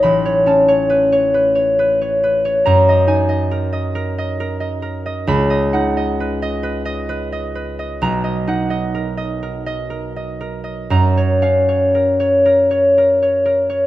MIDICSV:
0, 0, Header, 1, 2, 480
1, 0, Start_track
1, 0, Key_signature, 6, "major"
1, 0, Tempo, 868307
1, 17, Time_signature, 3, 2, 24, 8
1, 1937, Tempo, 891530
1, 2897, Tempo, 913242
1, 4817, Tempo, 977199
1, 5777, Tempo, 1015228
1, 7182, End_track
2, 0, Start_track
2, 0, Title_t, "Harp"
2, 0, Program_c, 0, 46
2, 0, Note_on_c, 0, 61, 48
2, 0, Note_on_c, 0, 73, 46
2, 0, Note_on_c, 0, 85, 74
2, 15, Note_on_c, 0, 83, 72
2, 19, Note_on_c, 0, 33, 61
2, 134, Note_off_c, 0, 73, 0
2, 140, Note_on_c, 0, 73, 54
2, 249, Note_off_c, 0, 61, 0
2, 255, Note_on_c, 0, 61, 46
2, 261, Note_on_c, 0, 81, 54
2, 371, Note_off_c, 0, 73, 0
2, 378, Note_on_c, 0, 73, 53
2, 496, Note_on_c, 0, 71, 47
2, 614, Note_off_c, 0, 73, 0
2, 621, Note_on_c, 0, 73, 51
2, 734, Note_off_c, 0, 85, 0
2, 735, Note_off_c, 0, 71, 0
2, 742, Note_on_c, 0, 71, 49
2, 851, Note_off_c, 0, 73, 0
2, 858, Note_on_c, 0, 73, 52
2, 983, Note_off_c, 0, 71, 0
2, 989, Note_on_c, 0, 71, 57
2, 1107, Note_off_c, 0, 73, 0
2, 1114, Note_on_c, 0, 73, 42
2, 1229, Note_off_c, 0, 71, 0
2, 1236, Note_on_c, 0, 71, 52
2, 1348, Note_off_c, 0, 73, 0
2, 1354, Note_on_c, 0, 73, 50
2, 1467, Note_on_c, 0, 82, 79
2, 1472, Note_off_c, 0, 83, 0
2, 1472, Note_on_c, 0, 42, 65
2, 1474, Note_off_c, 0, 33, 0
2, 1475, Note_off_c, 0, 81, 0
2, 1484, Note_off_c, 0, 71, 0
2, 1597, Note_on_c, 0, 75, 58
2, 1699, Note_on_c, 0, 63, 47
2, 1703, Note_on_c, 0, 80, 56
2, 1811, Note_off_c, 0, 75, 0
2, 1818, Note_on_c, 0, 75, 51
2, 1942, Note_on_c, 0, 70, 52
2, 2050, Note_off_c, 0, 75, 0
2, 2056, Note_on_c, 0, 75, 54
2, 2171, Note_off_c, 0, 70, 0
2, 2177, Note_on_c, 0, 70, 57
2, 2297, Note_off_c, 0, 75, 0
2, 2303, Note_on_c, 0, 75, 54
2, 2399, Note_off_c, 0, 61, 0
2, 2413, Note_off_c, 0, 70, 0
2, 2420, Note_on_c, 0, 70, 59
2, 2522, Note_off_c, 0, 75, 0
2, 2528, Note_on_c, 0, 75, 50
2, 2641, Note_off_c, 0, 70, 0
2, 2647, Note_on_c, 0, 70, 53
2, 2767, Note_off_c, 0, 75, 0
2, 2774, Note_on_c, 0, 75, 52
2, 2889, Note_on_c, 0, 37, 64
2, 2895, Note_on_c, 0, 83, 80
2, 2912, Note_off_c, 0, 70, 0
2, 2922, Note_off_c, 0, 82, 0
2, 2925, Note_off_c, 0, 42, 0
2, 3003, Note_off_c, 0, 75, 0
2, 3010, Note_on_c, 0, 75, 58
2, 3129, Note_off_c, 0, 63, 0
2, 3131, Note_on_c, 0, 78, 54
2, 3135, Note_on_c, 0, 63, 53
2, 3249, Note_off_c, 0, 75, 0
2, 3255, Note_on_c, 0, 75, 51
2, 3378, Note_on_c, 0, 71, 54
2, 3456, Note_off_c, 0, 73, 0
2, 3488, Note_off_c, 0, 75, 0
2, 3494, Note_on_c, 0, 75, 61
2, 3597, Note_off_c, 0, 71, 0
2, 3604, Note_on_c, 0, 71, 60
2, 3714, Note_off_c, 0, 75, 0
2, 3720, Note_on_c, 0, 75, 57
2, 3787, Note_off_c, 0, 80, 0
2, 3838, Note_off_c, 0, 71, 0
2, 3845, Note_on_c, 0, 71, 59
2, 3961, Note_off_c, 0, 75, 0
2, 3968, Note_on_c, 0, 75, 46
2, 4082, Note_off_c, 0, 71, 0
2, 4088, Note_on_c, 0, 71, 46
2, 4206, Note_off_c, 0, 75, 0
2, 4213, Note_on_c, 0, 75, 46
2, 4331, Note_on_c, 0, 35, 65
2, 4336, Note_on_c, 0, 82, 80
2, 4347, Note_off_c, 0, 37, 0
2, 4443, Note_off_c, 0, 75, 0
2, 4449, Note_on_c, 0, 75, 53
2, 4566, Note_off_c, 0, 63, 0
2, 4571, Note_off_c, 0, 78, 0
2, 4572, Note_on_c, 0, 63, 53
2, 4577, Note_on_c, 0, 78, 56
2, 4685, Note_off_c, 0, 75, 0
2, 4692, Note_on_c, 0, 75, 52
2, 4820, Note_on_c, 0, 70, 50
2, 4926, Note_off_c, 0, 75, 0
2, 4932, Note_on_c, 0, 75, 58
2, 4936, Note_off_c, 0, 83, 0
2, 5050, Note_off_c, 0, 70, 0
2, 5056, Note_on_c, 0, 70, 50
2, 5166, Note_off_c, 0, 75, 0
2, 5172, Note_on_c, 0, 75, 53
2, 5283, Note_off_c, 0, 70, 0
2, 5289, Note_on_c, 0, 70, 49
2, 5412, Note_off_c, 0, 75, 0
2, 5418, Note_on_c, 0, 75, 43
2, 5531, Note_off_c, 0, 70, 0
2, 5537, Note_on_c, 0, 70, 47
2, 5645, Note_off_c, 0, 75, 0
2, 5651, Note_on_c, 0, 75, 41
2, 5777, Note_off_c, 0, 82, 0
2, 5780, Note_on_c, 0, 42, 58
2, 5784, Note_on_c, 0, 82, 73
2, 5793, Note_off_c, 0, 71, 0
2, 5794, Note_off_c, 0, 75, 0
2, 5796, Note_off_c, 0, 35, 0
2, 5796, Note_off_c, 0, 63, 0
2, 5909, Note_on_c, 0, 73, 46
2, 6025, Note_on_c, 0, 61, 47
2, 6027, Note_on_c, 0, 77, 48
2, 6146, Note_off_c, 0, 73, 0
2, 6151, Note_on_c, 0, 73, 46
2, 6269, Note_off_c, 0, 70, 0
2, 6274, Note_on_c, 0, 70, 44
2, 6388, Note_off_c, 0, 73, 0
2, 6393, Note_on_c, 0, 73, 52
2, 6481, Note_off_c, 0, 78, 0
2, 6509, Note_off_c, 0, 70, 0
2, 6515, Note_on_c, 0, 70, 49
2, 6628, Note_off_c, 0, 73, 0
2, 6634, Note_on_c, 0, 73, 42
2, 6756, Note_off_c, 0, 70, 0
2, 6762, Note_on_c, 0, 70, 47
2, 6873, Note_off_c, 0, 73, 0
2, 6878, Note_on_c, 0, 73, 41
2, 6982, Note_off_c, 0, 70, 0
2, 6987, Note_on_c, 0, 70, 45
2, 7096, Note_off_c, 0, 73, 0
2, 7101, Note_on_c, 0, 73, 43
2, 7182, Note_off_c, 0, 42, 0
2, 7182, Note_off_c, 0, 61, 0
2, 7182, Note_off_c, 0, 70, 0
2, 7182, Note_off_c, 0, 73, 0
2, 7182, Note_off_c, 0, 77, 0
2, 7182, Note_off_c, 0, 82, 0
2, 7182, End_track
0, 0, End_of_file